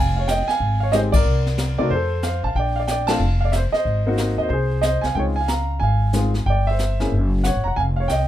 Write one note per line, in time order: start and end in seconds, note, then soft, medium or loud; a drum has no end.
0.00 0.45 F1 medium
0.00 0.15 F5 medium
0.00 0.17 G#5 medium
0.16 0.29 C#5 medium
0.16 0.28 F5 medium
0.28 0.48 D#5 medium
0.28 0.49 G5 medium
0.28 snare medium
0.28 hi-hat pedal medium
0.48 0.79 F5 medium
0.48 0.82 G#5 medium
0.48 snare soft
0.60 1.22 G#1 medium
0.60 brush sweep soft
0.60 kick soft
0.80 0.93 C#5 medium
0.80 0.93 F5 medium
0.92 1.11 G#3 medium
0.92 1.12 C4 medium
0.92 1.12 D#4 soft
0.92 1.12 G4 medium
0.92 1.00 C5 medium
0.92 0.97 D#5 medium
0.92 snare soft
0.92 hi-hat pedal medium
1.12 1.75 A#4 medium
1.12 1.74 D5 medium
1.12 kick medium
1.12 ride medium
1.25 1.74 C2 medium
1.25 brush sweep soft
1.46 snare soft
1.58 snare medium
1.58 hi-hat pedal medium
1.78 1.89 C3 medium
1.78 1.89 A3 medium
1.78 1.89 C4 medium
1.78 1.90 D#4 medium
1.78 1.90 F#4 medium
1.78 1.91 A#4 medium
1.78 1.91 D5 medium
1.90 2.40 F2 medium
1.90 2.24 C5 medium
1.90 brush sweep soft
1.90 kick soft
1.95 2.23 A4 medium
2.23 2.42 F5 medium
2.23 snare medium
2.23 hi-hat pedal soft
2.27 2.44 C5 medium
2.43 2.54 A1 medium
2.43 2.57 F5 medium
2.43 2.55 A5 medium
2.55 3.17 A#1 medium
2.55 2.77 G5 medium
2.55 brush sweep soft
2.55 kick soft
2.59 2.77 D5 medium
2.76 2.84 D5 medium
2.76 2.81 F5 medium
2.87 3.09 D5 medium
2.87 3.07 G5 medium
2.87 snare medium
2.87 hi-hat pedal medium
3.07 3.19 A3 medium
3.07 3.20 C4 medium
3.07 3.20 D4 medium
3.07 3.20 F4 medium
3.07 3.41 A5 loud
3.07 snare medium
3.07 ride medium
3.11 3.39 F5 medium
3.19 3.69 F1 medium
3.19 brush sweep soft
3.41 3.52 F5 medium
3.45 3.54 D5 medium
3.52 3.61 C5 medium
3.52 3.57 E5 medium
3.52 snare medium
3.52 hi-hat pedal soft
3.72 4.37 D#5 medium
3.72 muted upright bass stroke soft
3.72 snare soft
3.77 4.36 C5 medium
3.85 4.35 G#1 medium
3.85 brush sweep medium
3.85 kick soft
4.06 4.48 A#3 medium
4.06 4.49 C4 medium
4.06 4.49 D#4 medium
4.06 4.49 F#4 medium
4.18 snare medium
4.18 hi-hat pedal medium
4.37 4.49 D#2 medium
4.37 4.49 D#5 medium
4.42 4.47 C5 medium
4.49 5.00 C2 medium
4.49 4.83 C5 medium
4.49 brush sweep soft
4.49 kick soft
4.53 4.82 G#4 medium
4.81 5.02 D#5 medium
4.81 snare soft
4.81 hi-hat pedal medium
4.86 5.04 C5 medium
5.01 5.14 C2 medium
5.01 5.14 G#5 medium
5.01 snare soft
5.06 5.16 F5 medium
5.15 5.77 C#2 medium
5.15 5.34 G#3 soft
5.15 5.35 C4 soft
5.15 5.35 D#4 soft
5.15 5.35 F4 medium
5.15 5.24 C#5 medium
5.15 5.20 G5 medium
5.15 brush sweep soft
5.15 kick soft
5.36 5.47 G#5 medium
5.41 5.50 F5 medium
5.48 5.79 A#5 medium
5.48 snare medium
5.48 hi-hat pedal medium
5.53 5.81 F5 medium
5.80 6.43 G#1 medium
5.80 6.47 G#5 medium
5.80 brush sweep soft
5.80 kick soft
5.84 6.43 F5 medium
6.13 6.32 G#3 medium
6.13 6.32 C4 soft
6.13 6.33 D#4 medium
6.13 6.33 F4 medium
6.13 snare medium
6.13 hi-hat pedal medium
6.34 snare soft
6.46 7.08 G1 medium
6.46 6.65 G5 medium
6.46 brush sweep medium
6.46 kick soft
6.50 6.67 D5 medium
6.67 7.30 C5 medium
6.67 7.28 E5 medium
6.79 snare soft
6.79 hi-hat pedal medium
7.00 7.10 A#3 medium
7.00 7.10 C#4 medium
7.00 7.11 E4 medium
7.00 7.11 G#4 medium
7.00 snare soft
7.12 7.52 F#1 medium
7.12 brush sweep soft
7.12 kick soft
7.44 7.65 C#5 medium
7.44 7.63 F#5 medium
7.44 snare medium
7.44 hi-hat pedal medium
7.55 7.65 G#1 medium
7.64 7.76 E1 medium
7.64 7.77 F#5 medium
7.64 7.75 A#5 medium
7.76 8.07 F1 medium
7.76 7.85 F5 medium
7.76 7.81 G#5 medium
7.76 brush sweep medium
7.76 kick soft
7.96 8.10 C#5 medium
7.96 8.09 F5 medium
8.08 8.28 C2 medium
8.08 8.28 D#5 medium
8.08 8.28 G5 medium
8.08 snare medium
8.08 hi-hat pedal soft